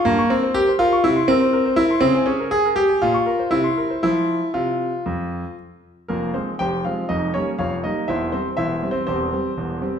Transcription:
<<
  \new Staff \with { instrumentName = "Grand piano" } { \time 4/4 \key f \minor \tempo 4 = 121 bes8 c'8 g'8 f'8 e'8 c'4 e'8 | c'8 des'8 aes'8 g'8 f'4 e'4 | e'4 f'2 r4 | <bes f' bes'>8 <c' c''>8 <g' c'' g''>8 <f' f''>8 <ees' ees''>8 <des' des''>8 <f' des'' f''>8 <ees' ees''>8 |
<e' c'' e''>8 <c' c''>8 \tuplet 3/2 { <e' c'' e''>4 <c' c''>8 } <c' g' c''>2 | }
  \new Staff \with { instrumentName = "Grand piano" } { \time 4/4 \key f \minor g,16 des'''16 bes'16 c''16 bes'16 c''16 bes'16 des'''16 c16 c'''16 bes'16 c''16 bes'16 c''16 bes'16 c'''16 | des16 aes''16 aes'16 bes'16 r16 bes'16 aes'16 aes''16 bes,16 des'''16 bes'16 c''16 c16 c'''16 bes'16 c''16 | <f c'' c'''>4 c4 f,4 r4 | <f,, f,>8 <f aes>8 <f,, f,>8 <f aes c'>8 <f,, f,>8 <g bes>8 <f,, f,>8 <g bes>8 |
<e,, e,>8 g8 <e,, e,>8 <g c'>8 <e,, e,>8 <g c'>8 <e,, e,>8 <g c'>8 | }
>>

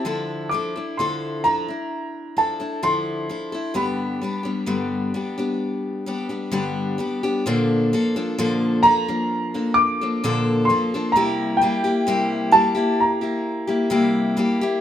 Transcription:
<<
  \new Staff \with { instrumentName = "Upright piano" } { \time 4/4 \key bes \lydian \tempo 4 = 65 a''8 d'''8 c'''8 bes''4 a''8 c'''4 | b''2. r4 | r4. bes''4 d'''4 c'''8 | bes''8 g''4 a''8 bes''4 r4 | }
  \new Staff \with { instrumentName = "Steel-string acoustic guitar" } { \time 4/4 \key bes \lydian <d f d' e' a'>8 <f d' e' a'>16 <d' e' a'>16 <d f d' e' a'>8 <f d' e' a'>16 <d' e'>8. <f d' e' a'>16 <d' e' a'>16 <d f d' e' a'>8 <f d' e' a'>16 <d' e' a'>16 | <g, d g b d' g'>8 <g b d' g'>16 <g b d' g'>16 <g, d g b d' g'>8 <g b d' g'>16 <g b d' g'>8. <g b d' g'>16 <g b d' g'>16 <g, d g b d' g'>8 <g b d' g'>16 <g b d' g'>16 | <bes, d f bes d' a'>8 <f bes d' a'>16 <f bes d' a'>16 <bes, d f bes d' a'>8 <f bes d' a'>16 <f bes d'>8 <f bes d' a'>8 <f bes d' a'>16 <bes, d f bes d' a'>8 <f bes d' a'>16 <f bes d' a'>16 | <c g bes e' g'>8 <g bes e' g'>16 <bes e' g'>16 <c g bes e' g'>8 <g bes e' g'>16 <bes e' g'>8 <bes e' g'>8 <bes e' g'>16 <c g bes e' g'>8 <g bes e' g'>16 <bes e' g'>16 | }
>>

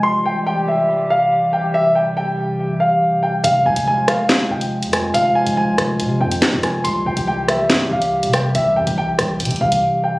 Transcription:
<<
  \new Staff \with { instrumentName = "Grand piano" } { \time 4/4 \key c \phrygian \tempo 4 = 141 c'''8 g''8 g''8 e''4 f''4 g''8 | e''8 g''8 g''4. f''4 g''8 | f''8 aes''8 aes''8 f''4 g''4 aes''8 | f''8 aes''8 aes''4. g''4 aes''8 |
c'''8 g''8 g''8 e''4 f''4 g''8 | e''8 g''8 g''4. f''4 g''8 | }
  \new Staff \with { instrumentName = "Ambient pad" } { \clef bass \time 4/4 \key c \phrygian << { <e g g'>1~ | <e g g'>1 | <f aes f'>1~ | <f aes f'>1 |
<e g g'>1~ | <e g g'>1 | } \\ { c1~ | c1~ | c1~ | c1 |
c1~ | c1 | } >> }
  \new Staff \with { instrumentName = "808-style bass" } { \clef bass \time 4/4 \key c \phrygian r1 | r1 | f,,8 c,16 f,,4.~ f,,16 f,,8. f,8. | f,,8. f,,8 c,16 f,,8 c8 f,8 aes,16 f,16 f,,8 |
c,8 c,16 c,4~ c,16 g,8 c,8. c8. | c,8 g,16 c,8 bes,,16 c,8 c16 c,16 c,8 r4 | }
  \new DrumStaff \with { instrumentName = "Drums" } \drummode { \time 4/4 r4 r4 r4 r4 | r4 r4 r4 r4 | hh8. hh16 r8 <hh ss>8 <hc hh sn>8. hh16 r16 hh16 <hh ss>8 | hh8. hh16 r8 <hh ss>8 hh8. hh16 <hc sn>8 <hh ss>8 |
hh8. hh16 r8 <hh ss>8 <hc hh sn>8. hh16 r16 hh16 <hh ss>8 | hh8. hh16 r8 <hh ss>8 hh32 hh32 hh32 hh16. hh16 r4 | }
>>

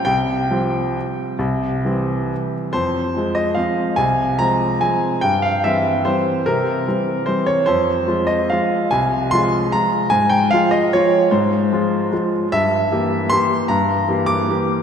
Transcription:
<<
  \new Staff \with { instrumentName = "Grand piano" } { \time 3/4 \key f \minor \tempo 4 = 147 g''2.~ | g''2~ g''8 r8 | c''4. ees''8 f''4 | aes''4 bes''4 aes''4 |
g''8 f''8 e''4 c''4 | bes'2 c''8 des''8 | c''4. ees''8 f''4 | aes''4 c'''4 bes''4 |
aes''8 g''8 f''8 ees''8 des''4 | c''2~ c''8 r8 | e''2 c'''4 | bes''4. d'''4. | }
  \new Staff \with { instrumentName = "Grand piano" } { \clef bass \time 3/4 \key f \minor c,4 <f g c'>2 | c,4 <e g c'>2 | f,4 <f aes c'>4 <f aes c'>4 | c,4 <f aes c'>4 <f aes c'>4 |
g,4 <e g c'>4 <e g c'>4 | c4 <e g c'>4 <e g c'>4 | f,4 <f aes f'>4 <f aes f'>4 | c,4 <f aes f'>4 <f aes f'>4 |
aes,4 <f aes f'>4 <f aes f'>4 | aes,4 <f aes f'>4 <f aes f'>4 | g,4 <e bes g'>4 <e bes g'>4 | g,4 <e bes g'>4 <e bes g'>4 | }
>>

